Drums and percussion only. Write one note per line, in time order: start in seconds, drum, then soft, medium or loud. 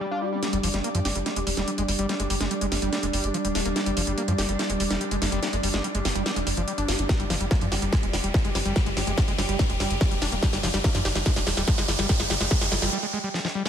0.43 snare soft
0.43 closed hi-hat medium
0.53 closed hi-hat medium
0.63 open hi-hat loud
0.74 snare soft
0.74 closed hi-hat medium
0.84 closed hi-hat medium
0.95 closed hi-hat medium
1.05 snare soft
1.05 open hi-hat loud
1.16 closed hi-hat medium
1.26 snare soft
1.26 closed hi-hat medium
1.36 closed hi-hat medium
1.47 open hi-hat loud
1.57 snare soft
1.57 closed hi-hat medium
1.68 closed hi-hat medium
1.78 closed hi-hat medium
1.88 open hi-hat loud
1.99 closed hi-hat medium
2.09 snare medium
2.09 closed hi-hat medium
2.20 closed hi-hat medium
2.30 open hi-hat loud
2.41 snare soft
2.41 closed hi-hat medium
2.51 closed hi-hat medium
2.61 closed hi-hat medium
2.72 snare medium
2.72 open hi-hat loud
2.82 closed hi-hat medium
2.93 snare medium
2.93 closed hi-hat medium
3.03 closed hi-hat medium
3.13 open hi-hat loud
3.24 closed hi-hat medium
3.34 closed hi-hat medium
3.45 closed hi-hat medium
3.55 snare medium
3.55 open hi-hat loud
3.66 closed hi-hat medium
3.76 snare medium
3.76 closed hi-hat medium
3.86 closed hi-hat medium
3.97 open hi-hat loud
4.07 closed hi-hat medium
4.18 closed hi-hat medium
4.28 closed hi-hat medium
4.38 snare medium
4.38 open hi-hat loud
4.49 closed hi-hat medium
4.59 snare medium
4.59 closed hi-hat medium
4.70 closed hi-hat medium
4.80 open hi-hat loud
4.90 snare medium
4.90 closed hi-hat medium
5.01 closed hi-hat medium
5.11 closed hi-hat medium
5.22 snare medium
5.22 open hi-hat loud
5.32 closed hi-hat medium
5.43 snare medium
5.43 closed hi-hat medium
5.53 closed hi-hat medium
5.63 open hi-hat loud
5.74 snare medium
5.74 closed hi-hat medium
5.84 closed hi-hat medium
5.95 closed hi-hat medium
6.05 snare medium
6.05 open hi-hat loud
6.16 closed hi-hat medium
6.26 snare medium
6.26 closed hi-hat medium
6.36 closed hi-hat medium
6.47 open hi-hat loud
6.57 closed hi-hat medium
6.68 closed hi-hat medium
6.78 closed hi-hat medium
6.88 snare medium
6.88 open hi-hat loud
6.99 closed hi-hat medium
7.09 kick loud
7.09 snare medium
7.09 closed hi-hat medium
7.20 closed hi-hat medium
7.30 snare medium
7.30 open hi-hat loud
7.41 closed hi-hat medium
7.51 kick loud
7.51 snare medium
7.51 closed hi-hat medium
7.61 closed hi-hat medium
7.72 snare medium
7.72 open hi-hat loud
7.82 closed hi-hat medium
7.93 kick loud
7.93 snare medium
7.93 closed hi-hat medium
8.03 closed hi-hat medium
8.13 snare medium
8.13 open hi-hat loud
8.24 closed hi-hat medium
8.34 kick loud
8.34 snare medium
8.34 closed hi-hat medium
8.45 closed hi-hat medium
8.55 snare medium
8.55 open hi-hat loud
8.66 closed hi-hat medium
8.76 kick loud
8.76 snare medium
8.76 closed hi-hat medium
8.86 closed hi-hat medium
8.97 snare medium
8.97 open hi-hat loud
9.07 closed hi-hat medium
9.18 kick loud
9.18 snare medium
9.18 closed hi-hat medium
9.28 closed hi-hat medium
9.38 snare medium
9.38 open hi-hat loud
9.49 closed hi-hat medium
9.59 kick loud
9.59 snare medium
9.59 closed hi-hat medium
9.70 closed hi-hat medium
9.80 snare medium
9.80 open hi-hat loud
9.91 closed hi-hat medium
10.01 kick loud
10.01 snare medium
10.01 closed hi-hat medium
10.11 closed hi-hat medium
10.22 snare medium
10.22 open hi-hat loud
10.32 closed hi-hat medium
10.43 kick loud
10.43 snare medium
10.43 closed hi-hat medium
10.53 snare medium
10.53 closed hi-hat medium
10.63 snare loud
10.63 open hi-hat loud
10.74 snare medium
10.74 closed hi-hat medium
10.84 kick loud
10.84 snare loud
10.84 closed hi-hat medium
10.95 snare medium
10.95 closed hi-hat medium
11.05 snare loud
11.05 open hi-hat loud
11.15 snare medium
11.15 closed hi-hat medium
11.26 kick loud
11.26 snare loud
11.26 closed hi-hat medium
11.36 snare medium
11.36 closed hi-hat medium
11.47 snare medium
11.47 open hi-hat loud
11.57 snare medium
11.57 closed hi-hat medium
11.68 kick loud
11.68 snare loud
11.68 closed hi-hat medium
11.78 snare medium
11.78 closed hi-hat medium
11.88 snare loud
11.88 open hi-hat loud
11.99 snare medium
11.99 closed hi-hat medium
12.09 kick loud
12.09 snare loud
12.09 closed hi-hat medium
12.20 snare medium
12.20 closed hi-hat medium
12.30 snare loud
12.30 open hi-hat loud
12.41 snare medium
12.41 closed hi-hat medium
12.51 kick loud
12.51 snare loud
12.51 closed hi-hat medium
12.61 snare loud
12.61 closed hi-hat medium
12.72 snare loud
12.72 open hi-hat loud
12.82 snare loud
12.82 closed hi-hat medium
13.34 snare medium
13.45 snare medium
13.66 snare medium